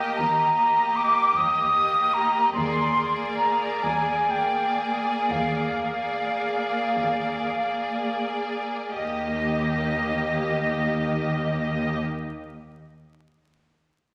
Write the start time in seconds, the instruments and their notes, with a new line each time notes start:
Already playing: viola section A#3, violin section G4 D#5, flute G5
0.17 cello section D#2, flute A#5
0.56 viola section A#3, violin section G4 D#5
0.96 flute D6
1.37 cello section D#2, flute D#6
1.74 viola section A#3, violin section G4 D#5
2.14 flute A#5
2.53 double bass section D#2, cello section D#2, viola section A#3, violin section G#4 D5, flute C6
2.94 viola section A#3, violin section G#4 D5
3.38 flute A#5
3.83 cello section D#2, flute G#5
4.30 viola section A#3, violin section G#4 D5, flute G5
4.79 flute G#5
5.31 cello section D#2, flute F5
5.84 viola section A#3, violin section G#4 D5
6.99 cello section D#2
7.59 viola section A#3, violin section D5
7.63 violin section G#4
8.94 double bass section D#2, cello section D#2, viola section A#3, flute D#5, violin section D#5
8.98 violin section G4